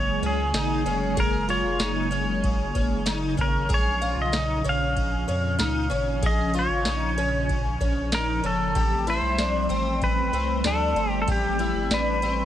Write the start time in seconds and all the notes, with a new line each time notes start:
Already playing: F#1 C#3 F#3 G#3 A#3 C#4 G#4 C#5
0.22 C#2 C#4, ride
0.26 G#4
0.53 G#1 D#4, snare, ride, tambourine
0.85 F1 C#4, ride
1.17 F#1 G#4 A#4, kick, ride
1.49 F4 C#5, ride
1.64 F1
1.79 F#1 D#4, snare, ride, tambourine
2.11 C#4, ride
2.44 kick, ride
2.75 F#1 C#4, kick, ride
3.06 D#4, snare, ride, tambourine
3.37 G#1 C#4 A#4, kick, ride
3.69 A#1 A#2 F3 C#4 G#4, kick, ride
3.74 C#5
4.01 F4, ride
4.17 B1
4.22 D#5
4.33 D#4, snare, ride, tambourine
4.64 A#1 C#4, ride
4.69 F5
4.97 kick, ride
5.28 F2 C#4, ride
5.59 C#2 D#4, snare, ride, tambourine
5.90 G#1 C#4, ride
6.22 A#1 G#4, kick, ride
6.26 D#5
6.54 F4, ride
6.59 C#5
6.70 G#1
6.85 A#1 D#4, snare, ride, tambourine
7.18 C#4, ride
7.49 kick, ride
7.81 A#1 C#4, kick, ride
8.12 D#4 A#4, snare, ride, tambourine
8.43 F#1 C#4 A4, ride
8.75 A1 G3 A3 C4 G4, kick, ride
9.07 E4 C5, ride
9.22 B1
9.38 D4, snare, ride, tambourine
9.69 A1 C4, ride
10.02 B4, kick, ride
10.33 C2 C4, ride
10.64 D2 D4 A4, snare, ride, tambourine
10.95 G1 C4, ride
11.10 G4
11.22 A4
11.28 A1 G4, kick, ride
11.32 G4
11.59 E4, ride
11.75 G1
11.90 A1 D4 B4, snare, ride, tambourine
12.22 C4, ride